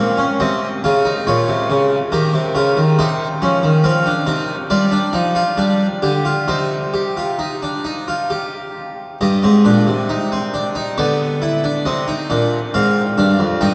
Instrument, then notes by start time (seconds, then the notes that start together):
harpsichord
Already playing: A#2 C4 F5
0.18 C#4
0.40 C3 C4 D#5
0.84 C#3 F4
1.05 D#4
1.27 A#2 F4 C#5
1.48 C3
1.70 C#3
2.12 D#3 G4 A#4
2.34 C3
2.55 C#3 F4
2.77 D#3
2.99 C3 D#4 C5
3.42 F3 C#4
3.63 D#3
3.84 F3 C4 F5
4.06 D4
4.27 C3 D#4
4.70 G3 F4 D5
4.92 D4
5.13 F3 D#4
5.35 F4
5.57 G3 D4
6.02 D3 G4
6.25 F4
6.48 C3 D#4 C5
6.94 G4
7.17 F4
7.39 D#4
7.62 D4
7.85 D#4
8.08 F4
8.30 G4
9.21 G2 G4 D#5
9.43 G#2 C4
9.65 A#2 D4
9.87 C3
10.09 D#4
10.32 C4
10.54 D4
10.75 D#4
10.98 D3 B3 D5
11.42 E4
11.64 D4
11.85 C3 C4 D#5
12.08 D#4
12.30 A#2 D4
12.74 G#2 C4 F5
13.18 G2 D4
13.39 F2
13.61 G2 D#4 G5